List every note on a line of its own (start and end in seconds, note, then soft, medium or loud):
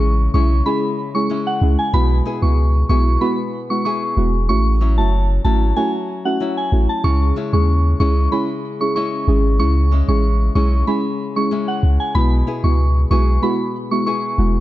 0.00 0.28 A1 medium
0.00 1.94 C#3 medium
0.00 0.34 G#3 medium
0.00 0.33 C#4 medium
0.00 0.35 E4 medium
0.00 0.15 C#6 medium
0.34 0.62 B1 medium
0.34 0.51 G#3 medium
0.34 0.65 G#3 medium
0.34 0.52 C#4 medium
0.34 1.29 C#4 medium
0.34 0.52 E4 medium
0.34 1.30 E4 medium
0.34 0.52 G#4 medium
0.34 0.62 C#6 medium
0.66 0.83 G#3 loud
0.66 1.29 G#3 medium
0.66 0.83 C#4 medium
0.66 0.84 E4 medium
0.66 0.84 G#4 loud
0.66 0.81 B5 medium
1.14 1.30 G#3 medium
1.14 1.31 C#4 medium
1.14 1.31 E4 medium
1.14 1.31 G#4 medium
1.14 1.28 C#6 medium
1.30 4.80 G#3 medium
1.30 2.01 C#4 medium
1.30 2.26 E4 medium
1.47 1.60 F#5 medium
1.61 1.76 C#2 medium
1.61 1.79 G#3 medium
1.61 1.79 C#4 medium
1.61 1.79 E4 medium
1.61 1.79 G#4 medium
1.79 1.92 G#5 medium
1.93 2.22 B1 loud
1.93 4.49 B2 medium
1.93 2.38 G#3 medium
1.93 2.38 B3 medium
1.93 2.38 E4 medium
1.93 2.38 F#4 loud
1.93 2.09 B5 loud
2.25 2.88 B3 medium
2.25 2.90 E4 medium
2.25 2.89 G#4 medium
2.42 2.84 C#2 medium
2.42 2.58 G#3 medium
2.42 2.58 B3 medium
2.42 2.58 E4 medium
2.42 2.58 F#4 medium
2.42 2.70 C#6 medium
2.89 3.17 B1 loud
2.89 3.07 G#3 medium
2.89 3.07 B3 medium
2.89 3.20 B3 medium
2.89 3.07 E4 medium
2.89 3.85 E4 medium
2.89 3.07 F#4 medium
2.89 3.85 G#4 medium
2.89 3.17 C#6 medium
3.21 3.39 G#3 loud
3.21 3.39 B3 medium
3.21 3.84 B3 medium
3.21 3.39 E4 medium
3.21 3.39 F#4 loud
3.21 3.36 B5 medium
3.70 3.86 G#3 medium
3.70 3.86 B3 medium
3.70 3.86 E4 medium
3.70 3.86 F#4 medium
3.70 3.83 C#6 medium
3.85 4.56 B3 medium
3.85 4.82 E4 medium
3.85 4.56 G#4 medium
3.85 4.31 C#6 medium
4.17 4.50 E1 medium
4.17 4.34 G#3 medium
4.17 4.35 B3 medium
4.17 4.35 E4 medium
4.17 4.35 F#4 medium
4.49 4.99 A1 medium
4.49 4.94 A3 medium
4.49 4.94 C#4 medium
4.49 4.94 E4 medium
4.49 4.94 F#4 loud
4.49 4.64 C#6 loud
4.81 5.43 F#3 medium
4.81 5.45 C#4 medium
4.81 5.45 E4 medium
4.97 5.39 F#1 medium
4.97 5.13 A3 medium
4.97 5.13 C#4 medium
4.97 5.14 E4 medium
4.97 5.14 F#4 medium
4.97 5.26 A5 medium
5.44 5.73 G#1 loud
5.44 5.75 F#3 medium
5.44 5.62 A3 medium
5.44 5.62 C#4 medium
5.44 6.40 C#4 medium
5.44 5.62 E4 medium
5.44 6.41 E4 medium
5.44 5.62 F#4 medium
5.44 5.73 A5 medium
5.76 6.39 F#3 medium
5.76 5.94 A3 loud
5.76 5.94 C#4 medium
5.76 5.94 E4 medium
5.76 5.94 F#4 loud
5.76 5.91 G#5 medium
6.25 6.41 A3 medium
6.25 6.41 C#4 medium
6.25 6.41 E4 medium
6.25 6.41 F#4 medium
6.25 6.39 F#5 medium
6.40 7.11 F#3 medium
6.40 7.36 C#4 medium
6.40 7.37 E4 medium
6.57 6.71 G#5 medium
6.72 6.87 A1 medium
6.72 6.90 A3 medium
6.72 6.90 C#4 medium
6.72 6.90 E4 medium
6.72 6.90 F#4 medium
6.89 7.02 A5 medium
7.04 7.32 C#2 loud
7.04 9.58 C#3 medium
7.04 7.49 G#3 medium
7.04 7.49 C#4 medium
7.04 7.49 E4 medium
7.04 7.49 G#4 loud
7.04 7.19 C#6 loud
7.36 8.00 G#3 medium
7.36 7.99 C#4 medium
7.36 8.01 E4 medium
7.53 7.94 D#2 loud
7.53 7.69 G#3 medium
7.53 7.69 C#4 medium
7.53 7.69 E4 medium
7.53 7.69 G#4 medium
7.53 7.81 C#6 medium
7.99 8.28 C#2 medium
7.99 8.17 G#3 medium
7.99 8.31 G#3 medium
7.99 8.17 C#4 medium
7.99 8.95 C#4 medium
7.99 8.18 E4 medium
7.99 8.97 E4 medium
7.99 8.18 G#4 medium
7.99 8.28 C#6 medium
8.31 8.49 G#3 loud
8.31 8.95 G#3 medium
8.31 8.49 C#4 medium
8.31 8.50 E4 medium
8.31 8.50 G#4 loud
8.31 8.47 B5 medium
8.80 8.96 G#3 medium
8.80 8.96 C#4 medium
8.80 8.97 E4 medium
8.80 8.97 G#4 medium
8.80 8.94 C#6 medium
8.96 9.91 G#3 medium
8.96 9.91 C#4 medium
8.96 9.92 E4 medium
8.96 9.42 C#6 medium
9.27 9.61 G#1 medium
9.27 9.45 G#3 medium
9.27 9.45 C#4 medium
9.27 9.45 E4 medium
9.27 9.45 G#4 medium
9.59 10.02 C#2 loud
9.59 12.15 C#3 medium
9.59 10.04 G#3 medium
9.59 10.04 C#4 medium
9.59 10.04 E4 medium
9.59 10.04 G#4 loud
9.59 9.74 C#6 loud
9.91 10.55 G#3 medium
9.91 10.55 C#4 medium
9.91 10.56 E4 medium
10.08 10.50 A1 loud
10.08 10.24 G#3 medium
10.08 10.24 C#4 medium
10.08 10.24 E4 medium
10.08 10.24 G#4 medium
10.08 10.36 C#6 medium
10.55 10.83 B1 medium
10.55 10.73 G#3 medium
10.55 10.87 G#3 medium
10.55 10.73 C#4 medium
10.55 11.51 C#4 medium
10.55 10.73 E4 medium
10.55 11.52 E4 medium
10.55 10.73 G#4 medium
10.55 10.83 C#6 medium
10.87 11.05 G#3 loud
10.87 11.51 G#3 medium
10.87 11.05 C#4 medium
10.87 11.05 E4 medium
10.87 11.05 G#4 loud
10.87 11.02 B5 medium
11.36 11.52 G#3 medium
11.36 11.52 C#4 medium
11.36 11.52 E4 medium
11.36 11.52 G#4 medium
11.36 11.49 C#6 medium
11.51 14.60 G#3 medium
11.51 12.22 C#4 medium
11.51 12.47 E4 medium
11.68 11.81 F#5 medium
11.83 11.98 C#2 medium
12.00 12.13 G#5 medium
12.15 12.43 B1 loud
12.15 14.60 B2 medium
12.15 12.60 G#3 medium
12.15 12.60 B3 medium
12.15 12.60 E4 medium
12.15 12.60 F#4 loud
12.15 12.30 B5 loud
12.47 13.10 B3 medium
12.47 13.11 E4 medium
12.47 13.11 G#4 medium
12.63 13.05 C#2 medium
12.63 12.79 G#3 medium
12.63 12.79 B3 medium
12.63 12.80 E4 medium
12.63 12.80 F#4 medium
12.63 12.92 C#6 medium
13.10 13.39 B1 loud
13.10 13.28 G#3 medium
13.10 13.28 B3 medium
13.10 13.41 B3 medium
13.10 13.28 E4 medium
13.10 14.06 E4 medium
13.10 13.28 F#4 medium
13.10 14.06 G#4 medium
13.10 13.39 C#6 medium
13.42 13.60 G#3 loud
13.42 13.60 B3 medium
13.42 14.05 B3 medium
13.42 13.60 E4 medium
13.42 13.60 F#4 loud
13.42 13.57 B5 medium
13.91 14.07 G#3 medium
13.91 14.07 B3 medium
13.91 14.07 E4 medium
13.91 14.07 F#4 medium
13.91 14.05 C#6 medium
14.06 14.60 B3 medium
14.06 14.60 E4 medium
14.06 14.60 G#4 medium
14.06 14.52 C#6 medium
14.38 14.60 E1 medium
14.38 14.56 G#3 medium
14.38 14.56 B3 medium
14.38 14.56 E4 medium
14.38 14.56 F#4 medium